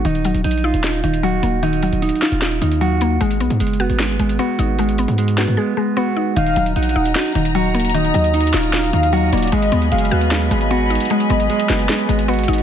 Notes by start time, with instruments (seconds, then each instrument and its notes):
0.05 808-style bass D#1, synth pluck D#3, clean electric guitar D#4, closed hi-hat
0.15 closed hi-hat
0.25 synth pluck F#3, closed hi-hat
0.35 808-style bass D#1, closed hi-hat
0.44 808-style bass A#1, clean electric guitar D#4, closed hi-hat
0.51 closed hi-hat
0.58 closed hi-hat
0.64 synth pluck D#4, clean electric guitar F4
0.74 808-style bass D#1, closed hi-hat
0.84 clean electric guitar D#4, synth pluck F4, snare, clap, closed hi-hat
0.94 closed hi-hat
1.04 808-style bass D#1, synth pluck D#3, clean electric guitar D#4, closed hi-hat
1.14 closed hi-hat
1.23 synth pluck F#3, clean electric guitar F#4, closed hi-hat
1.43 808-style bass D#1, synth pluck A#3, closed hi-hat
1.63 synth pluck D#3, clean electric guitar D#4, closed hi-hat
1.73 closed hi-hat
1.83 synth pluck F#3, closed hi-hat
1.92 808-style bass D#1, closed hi-hat
2.02 clean electric guitar D#4, closed hi-hat
2.09 closed hi-hat
2.15 closed hi-hat
2.22 synth pluck D#4, clean electric guitar F4, snare, clap
2.32 808-style bass D#1, closed hi-hat
2.42 clean electric guitar D#4, synth pluck F4, snare, clap, closed hi-hat
2.51 closed hi-hat
2.61 808-style bass D#2, synth pluck D#3, clean electric guitar D#4, closed hi-hat
2.71 closed hi-hat
2.81 synth pluck F#3, clean electric guitar F#4, closed hi-hat
3.01 synth pluck A#3, closed hi-hat
3.21 808-style bass G#1, synth pluck G#3, clean electric guitar G#3, closed hi-hat
3.31 closed hi-hat
3.40 808-style bass B1, synth pluck B3, closed hi-hat
3.50 808-style bass G#2, closed hi-hat
3.60 808-style bass F#1, clean electric guitar G#3, closed hi-hat
3.67 closed hi-hat
3.73 closed hi-hat
3.80 clean electric guitar B3, synth pluck F#4
3.90 808-style bass G#1, closed hi-hat
3.99 clean electric guitar G#3, synth pluck G#4, snare, clap, closed hi-hat
4.09 closed hi-hat
4.19 808-style bass G#1, synth pluck G#3, clean electric guitar G#3, closed hi-hat
4.29 closed hi-hat
4.39 synth pluck B3, clean electric guitar F#4, closed hi-hat
4.59 808-style bass G#1, synth pluck D#4, closed hi-hat
4.78 clean electric guitar G#3, synth pluck G#3, closed hi-hat
4.89 closed hi-hat
4.98 synth pluck B3, closed hi-hat
5.08 808-style bass G#2, closed hi-hat
5.18 clean electric guitar G#3, closed hi-hat
5.28 closed hi-hat
5.38 clean electric guitar B3, synth pluck F#4, snare, clap, open hi-hat
5.48 808-style bass G#2, closed hi-hat
5.57 clean electric guitar G#3, synth pluck G#4
5.77 synth pluck G#3, clean electric guitar G#3
5.97 synth pluck B3, clean electric guitar F#4
6.17 synth pluck D#4
6.36 808-style bass D#1, synth pluck D#3, string section F#3 D#5 A#5, clean electric guitar D#4, soft synth lead F5, closed hi-hat
6.47 closed hi-hat
6.56 808-style bass D#1, synth pluck F#3, closed hi-hat
6.66 closed hi-hat
6.76 808-style bass A#1, clean electric guitar D#4, soft synth lead F#5, closed hi-hat
6.83 closed hi-hat
6.89 closed hi-hat
6.96 808-style bass D#1, synth pluck D#4
7.06 closed hi-hat
7.15 clean electric guitar D#4, synth pluck F#4, snare, clap, closed hi-hat
7.25 closed hi-hat
7.35 808-style bass D#1, synth pluck D#3, clean electric guitar D#4, closed hi-hat
7.45 closed hi-hat
7.55 synth pluck F#3, clean electric guitar F#4, closed hi-hat
7.74 synth pluck A#3, closed hi-hat
7.80 closed hi-hat
7.85 closed hi-hat
7.90 closed hi-hat
7.94 synth pluck D#3, clean electric guitar D#4, soft synth lead D#5, closed hi-hat
8.04 closed hi-hat
8.14 808-style bass D#2, synth pluck F#3, closed hi-hat
8.24 closed hi-hat
8.34 clean electric guitar D#4, closed hi-hat
8.41 closed hi-hat
8.47 closed hi-hat
8.54 808-style bass D#1, synth pluck D#4, clean electric guitar F4, snare, clap, open hi-hat
8.63 closed hi-hat
8.73 clean electric guitar D#4, synth pluck F4, soft synth lead F5, snare, clap, closed hi-hat
8.83 closed hi-hat
8.93 808-style bass D#2, synth pluck D#3, clean electric guitar D#4, closed hi-hat
9.03 closed hi-hat
9.13 synth pluck F#3, clean electric guitar F#4, closed hi-hat
9.32 808-style bass D#1, synth pluck A#3, soft synth lead D5, closed hi-hat
9.38 closed hi-hat
9.43 closed hi-hat
9.47 closed hi-hat
9.52 808-style bass G#1, synth pluck G#3, clean electric guitar G#3, soft synth lead D#5, string section G#5 B5, closed hi-hat
9.62 closed hi-hat
9.72 808-style bass D#2, synth pluck B3, closed hi-hat
9.82 closed hi-hat
9.92 808-style bass F#1, clean electric guitar G#3, soft synth lead F5, closed hi-hat
9.98 closed hi-hat
10.05 closed hi-hat
10.11 808-style bass D#2, clean electric guitar B3, synth pluck F#4
10.21 closed hi-hat
10.31 clean electric guitar G#3, synth pluck G#4, snare, clap, closed hi-hat
10.41 closed hi-hat
10.51 808-style bass G#1, synth pluck G#3, clean electric guitar G#3, closed hi-hat
10.61 closed hi-hat
10.71 synth pluck B3, clean electric guitar F#4, closed hi-hat
10.90 synth pluck D#4, closed hi-hat
10.95 closed hi-hat
11.00 closed hi-hat
11.05 closed hi-hat
11.10 clean electric guitar G#3, synth pluck G#3, soft synth lead D#5, closed hi-hat
11.20 closed hi-hat
11.30 808-style bass G#1, synth pluck B3, closed hi-hat
11.40 closed hi-hat
11.50 clean electric guitar G#3, closed hi-hat
11.60 closed hi-hat
11.69 808-style bass F#1, clean electric guitar B3, synth pluck F#4, snare, clap, open hi-hat
11.79 closed hi-hat
11.89 clean electric guitar G#3, synth pluck G#4, snare, clap, closed hi-hat
11.99 closed hi-hat
12.09 808-style bass G#1, synth pluck G#3, clean electric guitar G#3, closed hi-hat
12.19 closed hi-hat
12.28 synth pluck B3, clean electric guitar F#4, closed hi-hat
12.34 closed hi-hat
12.39 closed hi-hat
12.43 closed hi-hat
12.48 808-style bass G#1, synth pluck D#4, closed hi-hat
12.53 closed hi-hat
12.58 closed hi-hat